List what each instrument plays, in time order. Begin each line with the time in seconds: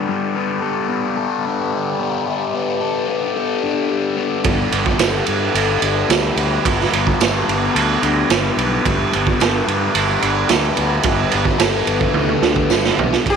Already playing: distorted electric guitar B3 D4 A4, harmonium B3 G4 A4 D5
0.08 distorted electric guitar G3
0.36 distorted electric guitar B3
0.62 distorted electric guitar A4
0.88 distorted electric guitar B3
1.17 distorted electric guitar A4
1.45 distorted electric guitar D4
1.73 distorted electric guitar G3
1.99 distorted electric guitar B3
2.27 distorted electric guitar G3
2.55 distorted electric guitar B3
2.81 distorted electric guitar A4
3.08 distorted electric guitar B3
3.36 distorted electric guitar A4
3.62 distorted electric guitar D4
3.90 distorted electric guitar G3
4.16 distorted electric guitar B3
4.43 fingered electric bass G1, distorted electric guitar G3, harmonium E5, kick, ride
4.72 fingered electric bass G1, distorted electric guitar B3, ride
4.86 kick
4.99 fingered electric bass G1, distorted electric guitar A4, snare, ride, tambourine
5.26 fingered electric bass G2, distorted electric guitar B3, ride
5.55 fingered electric bass G1, distorted electric guitar A4, ride
5.82 fingered electric bass G1, distorted electric guitar D4, ride
6.09 fingered electric bass D2, distorted electric guitar G3, snare, ride, tambourine
6.36 fingered electric bass D2, distorted electric guitar B3, ride
6.65 fingered electric bass G1, distorted electric guitar G3, kick, ride
6.80 snare
6.93 fingered electric bass G1, distorted electric guitar B3, ride
7.07 kick
7.20 fingered electric bass G1, distorted electric guitar A4, snare, ride, tambourine
7.48 fingered electric bass G1, distorted electric guitar B3, ride
7.75 fingered electric bass D2, distorted electric guitar A4, ride
8.03 fingered electric bass D2, distorted electric guitar D4, ride
8.29 fingered electric bass G1, distorted electric guitar G3, snare, ride, tambourine
8.57 fingered electric bass B1, distorted electric guitar B3, ride
8.85 fingered electric bass G1, distorted electric guitar G3, kick, ride
9.13 fingered electric bass G1, distorted electric guitar B3, ride
9.27 kick
9.39 fingered electric bass G1, distorted electric guitar A4, snare, ride, tambourine
9.66 fingered electric bass G2, distorted electric guitar B3, ride
9.95 fingered electric bass G1, distorted electric guitar A4, ride
10.22 fingered electric bass G1, distorted electric guitar D4, ride
10.49 fingered electric bass D2, distorted electric guitar G3, snare, ride, tambourine
10.76 fingered electric bass D2, distorted electric guitar B3, ride
11.03 fingered electric bass G1, distorted electric guitar G3, kick, ride
11.31 fingered electric bass G1, distorted electric guitar B3, ride
11.45 kick
11.59 fingered electric bass G1, distorted electric guitar A4, snare, ride, tambourine
11.85 fingered electric bass G1, distorted electric guitar B3, ride
12.01 kick
12.13 fingered electric bass D2, distorted electric guitar A4, high tom
12.29 high tom
12.42 fingered electric bass D2, distorted electric guitar D4, snare
12.56 kick
12.69 fingered electric bass G1, distorted electric guitar G3, snare, tambourine
12.84 snare
12.97 fingered electric bass B1, distorted electric guitar B3, floor tom
13.13 snare
13.26 fingered electric bass G1, distorted electric guitar G3, harmonium G4 B4 D5 A5, kick, ride
13.30 sitar G4